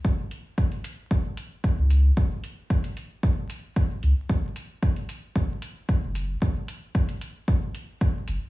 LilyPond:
<<
  \new Staff \with { instrumentName = "Sub bass" } { \clef bass \time 4/4 \key b \dorian \tempo 4 = 113 fis,,16 r4. r16 fis,,16 r4 cis,8. | fis,,16 r2. r16 cis,16 r16 | b,,16 r4. r16 b,,16 r4 fis,,8. | b,,16 r2. r16 fis,,16 r16 | }
  \new DrumStaff \with { instrumentName = "Drums" } \drummode { \time 4/4 bd8 hh8 bd16 hh16 hh8 bd8 hh8 bd8 hh8 | bd8 hh8 bd16 hh16 hh8 bd8 hh8 bd8 hh8 | bd8 hh8 bd16 hh16 hh8 bd8 hh8 bd8 hh8 | bd8 hh8 bd16 hh16 hh8 bd8 hh8 bd8 hh8 | }
>>